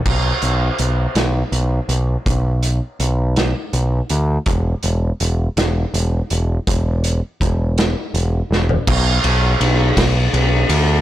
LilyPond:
<<
  \new Staff \with { instrumentName = "Picked electric bass" } { \clef bass \time 6/8 \key b \minor \tempo 4. = 54 b,,8 b,,8 b,,8 b,,8 b,,8 b,,8 | b,,4 b,,4 b,,8 d,8 | e,,8 e,,8 e,,8 e,,8 e,,8 e,,8 | e,,4 e,,4 e,,8 e,,8 |
b,,8 b,,8 b,,8 b,,8 b,,8 d,8 | }
  \new DrumStaff \with { instrumentName = "Drums" } \drummode { \time 6/8 <cymc bd>8 hh8 hh8 <hh sn>8 hh8 hh8 | <hh bd>8 hh8 hh8 <hh sn>8 hh8 hh8 | <hh bd>8 hh8 hh8 <hh sn>8 hh8 hh8 | <hh bd>8 hh8 <hh bd>8 <hh sn>8 hh8 sn16 tomfh16 |
<cymc bd>8 cymr8 cymr8 <bd cymr sn>8 cymr8 cymr8 | }
>>